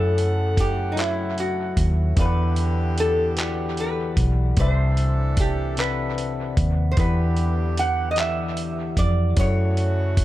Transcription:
Already playing: F#2 C#3 F#3 A3 E4 A4 C#5 F#5
0.18 closed hi-hat
0.57 G4, kick, closed hi-hat
0.92 F#3 D#4
0.96 E4 A4 C#5 E5, clap, closed hi-hat
1.38 F#4, closed hi-hat
1.77 D#2, kick, closed hi-hat
2.16 E2 D3 E3 B3 E4 G4 D5 F5, kick, closed hi-hat
2.20 B4
2.26 F#5
2.56 closed hi-hat
2.98 A4, closed hi-hat
3.37 E3 E4 F#4 G4 D5 F#5, clap, closed hi-hat
3.45 G4
3.77 B4, closed hi-hat
4.17 B1, kick, closed hi-hat
4.57 C2 C3 E3 C4 D4 A4 C5 D5, kick, closed hi-hat
4.61 E5
4.97 closed hi-hat
5.37 G4, kick, closed hi-hat
5.77 C3 C4 B4 D5 F#5, clap, closed hi-hat
6.18 closed hi-hat
6.57 D#2, kick, closed hi-hat
6.91 C5
6.97 E2 D3 E3 B3 E4 G4 B4 D5, kick, closed hi-hat
7.01 F#5
7.37 closed hi-hat
7.78 F#5, closed hi-hat
8.11 D#5
8.16 E3 E4 G4 D5, clap, closed hi-hat
8.20 E5 F#5
8.57 closed hi-hat
8.97 F2 D5, kick, closed hi-hat
9.36 F#2 C#3 F#3 A3 E4 F#4 A4 C#5, kick, closed hi-hat
9.40 F#5
9.77 closed hi-hat
10.17 kick, closed hi-hat

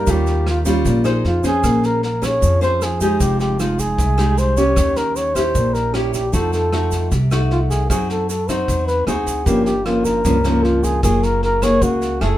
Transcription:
Already playing: A#4
0.06 D#2 D#3 G3 C#4 F4, kick, snare, shaker
0.11 G4
0.26 snare, shaker
0.47 F4, cross-stick, snare
0.65 G3 C#4 F4, kick, snare, shaker
0.85 A#1 A#2, kick, snare, shaker
1.04 D#4 G#4 C5, cross-stick, snare, shaker
1.24 F2 F4, snare
1.44 C#4 G#4 C5, kick, snare, shaker
1.63 A#1 A#3, kick, cross-stick, snare, shaker
1.83 A#4, snare, shaker
2.03 A#4, snare
2.22 C#4 G#4 C#5, kick, cross-stick, snare, shaker
2.41 F2 F3, kick, snare, shaker
2.61 C#4 G#4 C5, snare, shaker
2.81 G#4, cross-stick, snare, shaker
3.00 G#3 D#4 G4 G#4, kick, snare, shaker
3.20 F1 F3 G4, kick, snare, shaker
3.40 G4, snare, shaker
3.59 G#3 D#4 F4, cross-stick, snare, shaker
3.79 G#4, kick, snare, shaker
3.98 C2 C3, kick, snare, shaker
4.18 G#3 D#4 G4, cross-stick, snare, shaker
4.37 C5, snare, shaker
4.57 C#4 G4 C#5, kick, snare, shaker
4.76 D#2 D#3, kick, cross-stick, snare, shaker
4.96 A#4, snare, shaker
5.16 C#5, snare, shaker
5.34 C#4 E4 G4 C5, kick, cross-stick, snare, shaker
5.54 A#1 A#2, kick, snare, shaker
5.74 A#4, snare, shaker
5.94 C#4 E4 G4, cross-stick, snare
6.14 G4, kick, snare, shaker
6.32 F2 F3 A3 D#4 F#4 A4, kick, snare, shaker
6.53 A4, snare, shaker
6.73 A3 D#4 F#4, cross-stick, snare
6.91 kick, snare, shaker
7.11 C2 C3, kick, snare, shaker
7.31 A3 D#4 F#4, cross-stick, snare, shaker
7.51 F4, snare
7.70 G#4, kick, snare, shaker
7.90 F#2 F#3 C4 D#4 F#4 G#4, kick, cross-stick, snare, shaker
8.10 A4, snare, shaker
8.29 A4, snare, shaker
8.48 C4 D#4 F#4 C5, kick, cross-stick, snare, shaker
8.68 E2 F#3, kick, snare, shaker
8.87 B4, snare, shaker
9.07 D2 C4 D#4 F#4 G#4, cross-stick, snare, shaker
9.26 kick, snare, shaker
9.46 G1 G2 F3 A#3 C#4 G4, kick, snare, shaker
9.65 G4, snare, shaker
9.85 F3 A#3 C#4 F4, cross-stick, snare
10.05 A#4, kick, snare, shaker
10.25 C#2 G2 F3 A#3 C#4, kick, snare, shaker
10.44 F3 A#3 C#4, cross-stick, snare, shaker
10.63 F4, snare
10.84 G#4, kick, snare, shaker
11.03 F#1 F#3 A#3 F4 G#4, kick, cross-stick, snare, shaker
11.23 A#4, snare, shaker
11.43 A#4, snare
11.62 A#3 G#4 C#5, kick, cross-stick, snare, shaker
11.82 C#2 C#3 F#4, kick, snare, shaker
12.02 snare, shaker
12.21 F#1 A3 E4 G#4 A4, cross-stick, snare

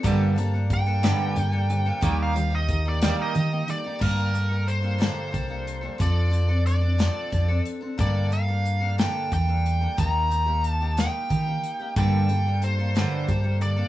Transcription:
0.03 G2 D3 G3 A#3 D4 G4 A4, kick, closed hi-hat
0.36 G2 D3 G3 A#3 D4 G4 A4 C5, closed hi-hat
0.54 G3 A#3 D4 A4
0.70 A#3 G4 A4 G5, kick, closed hi-hat
0.86 G3 A#3 D4 A4
1.03 G2 D3 G3 A#3 D4 A4, snare, closed hi-hat
1.36 G2 D3 G3 A#3 D4 G4 A4, closed hi-hat
1.51 G3 A#3 D4 A4
1.69 G2 D3 A#3 G4 C5, closed hi-hat
1.86 G3 A#3 D4 A4
2.01 D#2 D#3 G3 A#3 D#4 G4 A#4, kick, closed hi-hat
2.23 F5
2.33 D#3 G3 A#3 D#4 G4 C5, closed hi-hat
2.50 A#3 D#4 G4
2.55 D#5
2.68 D#4 G4 A#4, kick, closed hi-hat
2.85 A#3 D#4 G4
2.89 D5
3.02 D#3 G3 A#3 D#4 G4, snare, closed hi-hat
3.22 D#5
3.34 D#3 G3 A#3 D#4 G4 A#4, closed hi-hat
3.52 A#3 D#4 G4
3.68 D#3 G3 D#4 G4 A4 D5, closed hi-hat
3.84 A#3 D#4 G4
3.99 G2 D3 G3 A#3 D4 A#4, kick, crash
4.33 G3 A#3 D4 A4, closed hi-hat
4.49 G3 A#3 D4 A4
4.68 C5, closed hi-hat
4.82 G3 A#3 D4 A4
4.98 G2 D3 G3 A#3 D4 A4, snare, closed hi-hat
5.31 C2 G3 A#3 D4 A4, kick, closed hi-hat
5.48 G3 A#3 D4 A4
5.67 closed hi-hat
5.81 G3 A#3 D4 A4
5.98 F2 F3 C4 D4 A4 D5, kick, closed hi-hat
6.31 F3 C4 D4 A4, closed hi-hat
6.48 C4 D4 A4
6.66 D5, closed hi-hat
6.80 C4 D4 A4
6.98 F3 C4 D4 A4, snare, closed hi-hat
7.30 F2 F3 C4 D4 A4, kick, closed hi-hat
7.48 C4 D4 A4
7.65 closed hi-hat
7.81 C4 D4 A4
7.97 G2 D3 G3 A#3 D4 A4 D5, kick, closed hi-hat
8.30 G3 A#3 D4 A4 F5, closed hi-hat
8.48 G3 A#3 D4 A4
8.66 closed hi-hat
8.81 G3 A#3 D4 A4
8.98 G2 D3 G3 A#3 D4 A4 G5, snare, closed hi-hat
9.30 E2 G3 A#3 D4 A4 G5, kick, closed hi-hat
9.48 G3 A#3 D4 A4
9.66 closed hi-hat
9.81 G3 A#3 D4 A4
9.97 D#2 D#3 G3 A#3 D#4 G4 A#5, kick, closed hi-hat
10.30 G3 A#3 D#4 G4, closed hi-hat
10.46 A#3 D#4 G4
10.64 A5, closed hi-hat
10.81 A#3 D#4 G4
10.97 D#3 G3 A#3 D#4 G4 G5, snare, closed hi-hat
11.29 D#3 G3 A#3 D#4 G4, kick, closed hi-hat
11.46 A#3 D#4 G4
11.63 closed hi-hat
11.80 A#3 D#4 G4
11.96 G2 D3 G3 A#3 D4 G4 A4 G5, kick, closed hi-hat
12.29 G2 D3 G3 A#3 D4 G4 A4, closed hi-hat
12.46 G3 A#3 D4 A4
12.62 A#3 G4 A4 C5, closed hi-hat
12.79 G3 A#3 D4 A4
12.95 G2 D3 G3 A#3 D4 A4, snare, closed hi-hat
13.27 G2 D3 G3 A#3 D4 G4 A4, kick, closed hi-hat
13.43 G3 A#3 D4 A4
13.61 G2 D3 A#3 G4 A#4 D5, closed hi-hat
13.76 G3 A#3 D4 A4

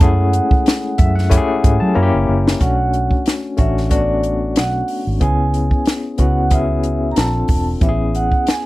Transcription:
Already playing: E4 G#4 A4
0.00 F#2 A3 C#4 E4 G#4 F#5, kick, closed hi-hat
0.33 closed hi-hat
0.51 kick
0.66 snare, closed hi-hat
0.98 F#2 E5, kick, closed hi-hat
1.16 F#5, snare
1.29 A3 C#4 E4 G4 G#5, kick, closed hi-hat
1.37 G#4
1.64 G#2, kick, closed hi-hat
1.80 F#3 A5
1.95 F#2 A#3 C#4 E4 F#4 A#5
2.03 G4
2.14 F#1
2.29 F#1
2.48 snare
2.60 B1 A3 C#4 D4 F#4 F#5, kick, closed hi-hat
2.93 closed hi-hat
3.11 kick
3.26 snare, closed hi-hat
3.57 A1 A3 C#4 D4 F#4 E5, kick, closed hi-hat
3.77 snare
3.90 A3 B3 D4 F#4 D5, kick, closed hi-hat
4.23 closed hi-hat
4.56 B1 F#5, snare, closed hi-hat
4.88 open hi-hat
5.07 G#1
5.20 C#2 B3 C#4 E4 G#4 G#5, kick, closed hi-hat
5.54 closed hi-hat
5.71 kick
5.86 snare, closed hi-hat
6.18 C#2 B3 C#4 E4 F#4 F#5, kick, closed hi-hat
6.51 B3 C#4 E4 G#4 E5, kick, closed hi-hat
6.83 closed hi-hat
7.12 A#5
7.16 A#1 C4 D4 F4 A4 A5, snare, closed hi-hat
7.48 E1, kick, open hi-hat
7.81 A1 B3 C#4 E4 G4 E5, kick, closed hi-hat
7.89 G#4
8.15 F#5, closed hi-hat
8.32 kick
8.47 G#5, snare, closed hi-hat

